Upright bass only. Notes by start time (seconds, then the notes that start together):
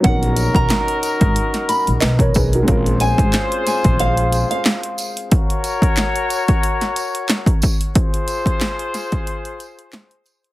0.05 A#1
0.55 B1
1.21 G#1
1.88 A#1
2.02 B1
2.36 B1
2.68 A#1
3.18 G#1
3.85 A#1